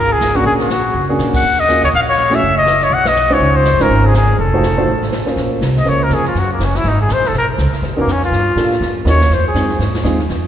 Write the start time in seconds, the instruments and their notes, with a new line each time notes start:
Already playing: upright bass G#1
0.00 trumpet A#4
0.12 trumpet G#4
0.20 upright bass G#1, snare, hi-hat pedal
0.35 grand piano A#3 C#4 D4 F#4 G#4, trumpet F#4, snare
0.44 upright bass A#1, trumpet G#4, brush sweep
0.60 trumpet F#4, snare
0.70 snare, hi-hat pedal
0.94 upright bass F#1, brush sweep
1.09 grand piano A#3 C#4 D4 F#4 G#4
1.19 upright bass A#2, snare, hi-hat pedal
1.34 trumpet F#5, kick, ride
1.43 upright bass D#2, brush sweep
1.60 trumpet D#5
1.68 grand piano A#3 C#4 F4 F#4 G#4, snare, hi-hat pedal
1.82 upright bass C#2, trumpet C#5, snare
1.93 upright bass A#1, trumpet F5, brush sweep
2.09 trumpet C#5
2.18 snare, hi-hat pedal
2.30 grand piano A3 C#4 E4 F#4 G#4, snare
2.35 trumpet E5
2.41 upright bass F#1, brush sweep
2.58 trumpet D#5
2.66 snare, hi-hat pedal
2.81 trumpet C#5, snare
2.90 upright bass B1, trumpet F#5, brush sweep
3.06 trumpet D#5, snare, ride
3.16 hi-hat pedal
3.30 grand piano G#3 C#4 D#4 F4 C5, trumpet C#5
3.40 upright bass C#2, brush sweep
3.56 trumpet C5
3.65 snare, hi-hat pedal
3.73 upright bass F2
3.79 upright bass G#2, grand piano G#3 C#4 D#4 F4 C5, trumpet A#4, snare
3.89 upright bass G#1, brush sweep
4.06 trumpet G#4
4.14 trumpet G#4, snare, hi-hat pedal
4.38 upright bass F1, trumpet A4, brush sweep
4.53 grand piano A3 D#4 F4 F#4 C5
4.63 snare, hi-hat pedal
4.78 grand piano A3 D#4 F4 F#4 C5
4.88 upright bass A1, brush sweep
5.02 snare
5.12 snare, hi-hat pedal
5.26 grand piano A#3 C#4 F4 G#4 C5, muted upright bass stroke, snare
5.36 upright bass A#1, brush sweep, snare
5.61 upright bass C2, snare, hi-hat pedal
5.76 trumpet D#5, snare
5.85 upright bass C#2, grand piano A#3 C#4 F4 G#4 C5, trumpet C#5, brush sweep, snare
6.03 trumpet A#4
6.10 upright bass F2, snare, hi-hat pedal
6.14 trumpet G#4
6.25 trumpet F4, snare
6.35 upright bass F#2, trumpet F#4, brush sweep, snare
6.53 trumpet A#3
6.59 upright bass F#1, snare, hi-hat pedal
6.64 trumpet C#4
6.75 trumpet E4, snare
6.84 upright bass G#1, trumpet D#4, brush sweep, snare
7.01 trumpet G#4
7.09 upright bass A#1, snare, hi-hat pedal
7.13 trumpet C5
7.24 trumpet A4, snare
7.33 upright bass B1, brush sweep, snare
7.38 trumpet A#4
7.58 upright bass C#2, snare, hi-hat pedal
7.72 muted upright bass stroke, snare
7.82 upright bass D#2, brush sweep, snare
7.90 upright bass B1
7.96 upright bass A#1, grand piano B3 C#4 D#4 F#4 A#4
8.01 trumpet A#3
8.07 upright bass F2, snare, hi-hat pedal
8.12 trumpet C#4
8.22 trumpet F4, snare
8.31 upright bass G2, brush sweep, snare
8.56 upright bass A2, grand piano A#3 D4 F4 G4 A4, snare, hi-hat pedal
8.72 snare
8.80 upright bass F#2, brush sweep, snare
9.05 upright bass D#2, grand piano A#3 C#4 E4 F#4 D#5, snare, hi-hat pedal
9.10 trumpet C#5
9.21 snare
9.30 upright bass F2, trumpet C5, brush sweep, snare
9.48 trumpet G#4
9.54 upright bass F#2, grand piano G#3 C4 D#4 F4 G#4, snare, hi-hat pedal
9.70 snare
9.79 upright bass G#2, brush sweep, snare
9.95 snare
10.03 upright bass D#2, grand piano G#3 C4 D#4 F4 G#4, snare, hi-hat pedal
10.19 snare
10.29 upright bass F2, brush sweep, snare